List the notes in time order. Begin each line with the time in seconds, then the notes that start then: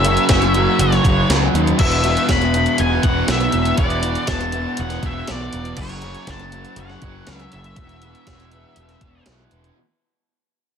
Already playing: F#1 F#2 E5
0.04 C#3 F#3, closed hi-hat
0.17 closed hi-hat
0.29 F#1 F#2 C#3 F#3, kick, snare, closed hi-hat
0.42 closed hi-hat
0.54 C#3 F#3, closed hi-hat
0.79 F#1 C#5, closed hi-hat
0.92 snare, closed hi-hat
1.04 F#1 C#3 F#3, kick, closed hi-hat
1.29 C#2 F#2 C#3 F#3, snare, closed hi-hat
1.54 D#2, closed hi-hat
1.67 closed hi-hat
1.78 E1 E2 B2 E3 E5, kick, crash
1.91 closed hi-hat
2.03 B2 E3, closed hi-hat
2.17 closed hi-hat
2.27 E1 E2 B2 E3, kick, snare, closed hi-hat
2.31 B5
2.42 closed hi-hat
2.54 B2 E3, closed hi-hat
2.66 closed hi-hat
2.78 E1 G#5, closed hi-hat
3.03 E1 B2 E3 F#5, kick, closed hi-hat
3.27 B1 E2 B2 E3 E5, snare, closed hi-hat
3.40 closed hi-hat
3.52 E1, closed hi-hat
3.65 closed hi-hat
3.77 E1 E2 B2 E3 D5, kick, closed hi-hat
3.90 closed hi-hat
4.02 B2 E3, closed hi-hat
4.15 closed hi-hat
4.27 E1 E2 B2 E3 A5, kick, snare, closed hi-hat
4.41 closed hi-hat
4.52 B2 E3, closed hi-hat
4.77 E1 F#5, closed hi-hat
4.90 snare, closed hi-hat
5.03 E1 B2 E3 E5, kick, closed hi-hat
5.28 B1 E2 B2 E3 D5, snare, closed hi-hat
5.53 E1, closed hi-hat
5.65 closed hi-hat
5.77 F#1 F#2 C#3 F#3, kick, crash
5.81 C#5
5.89 closed hi-hat
6.01 C#3 F#3, closed hi-hat
6.15 closed hi-hat
6.26 F#1 F#2 C#3 F#3 A5, kick, snare, closed hi-hat
6.39 closed hi-hat
6.51 C#3 F#3, closed hi-hat
6.65 closed hi-hat
6.76 F#1 F#5, closed hi-hat
6.89 snare
7.01 F#1 C#3 F#3, kick, closed hi-hat
7.27 C#2 F#2 C#3 F#3, snare, closed hi-hat
7.36 E5, closed hi-hat
7.52 F#1 E5, closed hi-hat
7.64 closed hi-hat
7.76 E1 E2 B2 E3, kick, closed hi-hat
7.89 closed hi-hat
8.02 B2 E3, closed hi-hat
8.15 closed hi-hat
8.27 E1 E2 B2 E3, kick, snare, closed hi-hat
8.40 closed hi-hat
8.51 B2 E3, closed hi-hat
8.76 E1, closed hi-hat
8.89 snare, closed hi-hat
9.01 E1 B2 E3, kick, closed hi-hat
9.26 B1 E2 B2 E3, snare, closed hi-hat
9.51 E1, closed hi-hat
9.64 closed hi-hat